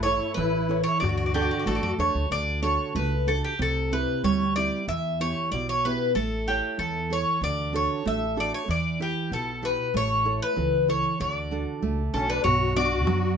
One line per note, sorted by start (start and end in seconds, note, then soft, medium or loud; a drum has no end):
0.00 0.18 A1 medium
0.00 0.35 A3 medium
0.00 0.34 E4 medium
0.00 0.34 C#5 medium
0.05 0.57 E4 soft
0.05 0.57 A4 soft
0.05 0.57 C#5 medium
0.05 darbuka tek medium
0.22 darbuka tek soft
0.34 0.83 A1 loud
0.34 1.00 E3 medium
0.34 0.82 E4 medium
0.34 0.83 B4 medium
0.34 darbuka tek medium
0.69 0.95 E4 soft
0.69 0.95 A4 soft
0.69 0.95 C#5 medium
0.69 darbuka tek medium
0.84 1.00 E4 medium
0.84 1.00 C#5 medium
1.00 1.47 D2 medium
1.00 1.64 D3 medium
1.00 1.95 F#4 medium
1.00 1.08 D5 medium
1.00 darbuka dum medium
1.09 1.16 D5 medium
1.18 1.25 D5 medium
1.26 1.33 D5 soft
1.34 1.86 D4 medium
1.34 1.86 F#4 soft
1.34 1.64 G4 medium
1.34 1.86 A4 medium
1.34 1.41 D5 medium
1.34 darbuka tek medium
1.42 1.50 D5 soft
1.51 1.58 D5 medium
1.51 darbuka tek soft
1.59 1.66 D5 soft
1.66 1.77 A1 medium
1.66 2.29 A3 medium
1.66 1.97 A4 medium
1.66 1.74 D5 soft
1.66 darbuka tek medium
1.75 1.82 D5 medium
1.82 1.97 F#2 medium
1.82 1.91 D5 medium
1.98 2.13 E2 medium
1.98 2.24 D4 soft
1.98 2.24 F#4 soft
1.98 2.25 A4 soft
1.98 2.29 C#5 medium
1.98 darbuka tek medium
2.15 2.29 D2 medium
2.31 2.76 D2 medium
2.31 2.93 D3 medium
2.31 2.62 D5 medium
2.62 3.14 D4 soft
2.62 3.14 F#4 soft
2.62 3.15 A4 medium
2.62 2.93 C#5 medium
2.95 3.40 C#2 medium
2.95 3.58 A3 medium
2.95 3.28 B4 medium
3.27 3.53 D4 soft
3.27 3.53 F#4 soft
3.27 3.44 A4 medium
3.27 3.53 A4 soft
3.44 3.60 G4 medium
3.59 4.04 C2 medium
3.59 4.21 C3 medium
3.59 3.94 A4 medium
3.92 4.43 C4 soft
3.92 4.43 E4 soft
3.92 4.43 G4 medium
3.92 4.24 B4 medium
4.24 4.68 D2 medium
4.24 4.86 G3 medium
4.24 4.54 C#5 medium
4.56 4.82 C4 soft
4.56 4.82 E4 soft
4.56 4.82 G4 medium
4.56 4.85 D5 medium
4.88 5.32 E2 medium
4.88 5.50 E3 medium
4.88 5.21 E5 loud
5.20 5.71 B3 soft
5.20 5.71 E4 soft
5.20 5.71 G4 medium
5.20 5.51 C#5 medium
5.52 5.96 B1 medium
5.52 6.14 B2 medium
5.52 5.68 D5 medium
5.69 5.85 C#5 medium
5.85 6.10 B3 soft
5.85 6.10 E4 soft
5.85 6.10 G4 soft
5.85 6.14 B4 medium
6.15 6.59 A1 medium
6.15 6.77 A3 medium
6.15 6.48 A4 medium
6.48 6.98 E4 medium
6.48 6.77 G4 medium
6.48 6.99 A4 soft
6.48 6.99 C#5 medium
6.79 7.23 E2 medium
6.79 7.41 E3 medium
6.79 7.11 A4 medium
7.10 7.36 E4 soft
7.10 7.36 A4 soft
7.10 7.36 C#5 soft
7.10 7.43 C#5 medium
7.41 7.86 D2 medium
7.41 8.04 D3 medium
7.41 7.72 D5 medium
7.73 8.24 D4 soft
7.73 8.24 F#4 soft
7.73 8.24 A4 medium
7.73 8.07 C#5 medium
8.05 8.50 A1 medium
8.05 8.67 A3 medium
8.05 8.36 E5 medium
8.37 8.62 D4 soft
8.37 8.62 F#4 soft
8.37 8.62 A4 soft
8.37 8.53 D5 medium
8.54 8.70 C#5 medium
8.68 9.12 E2 medium
8.68 9.30 E3 medium
8.68 8.99 D5 medium
9.00 9.50 E4 soft
9.00 9.50 G4 soft
9.00 9.31 G4 medium
9.00 9.51 B4 medium
9.32 9.76 B1 medium
9.32 9.93 B2 medium
9.32 9.65 A4 medium
9.62 9.88 E4 soft
9.62 9.88 G4 soft
9.62 9.88 B4 soft
9.62 9.93 B4 medium
9.94 10.38 A1 medium
9.94 10.55 A3 medium
9.94 10.40 C#5 medium
10.25 10.76 E4 soft
10.25 10.76 A4 soft
10.25 10.76 C#5 medium
10.42 10.89 B4 medium
10.56 11.01 C#2 medium
10.56 11.17 E3 medium
10.88 11.13 E4 soft
10.88 11.14 A4 soft
10.88 11.14 C#5 soft
10.88 11.18 C#5 medium
11.20 11.64 D2 medium
11.20 11.80 D3 medium
11.20 11.32 C#5 medium
11.32 12.10 D5 medium
11.51 12.01 D4 soft
11.51 12.01 F#4 soft
11.51 12.02 A4 medium
11.82 12.11 C#2 medium
11.82 12.43 A3 medium
12.14 12.42 B1 medium
12.14 12.28 C#4 medium
12.14 12.39 D4 soft
12.14 12.39 F#4 soft
12.14 12.28 A4 medium
12.14 12.39 A4 soft
12.28 12.43 D4 medium
12.28 12.43 B4 medium
12.44 13.07 B1 medium
12.44 13.06 B2 medium
12.44 12.73 F#4 medium
12.44 12.76 C#5 medium
12.44 darbuka dum medium
12.76 13.26 B3 soft
12.76 13.26 D4 soft
12.76 13.34 F#4 medium
12.76 13.26 F#4 medium
12.76 13.34 D5 loud
12.76 darbuka tek medium
12.92 darbuka tek soft
13.07 13.37 F#2 loud
13.07 13.37 F#3 medium
13.07 darbuka tek medium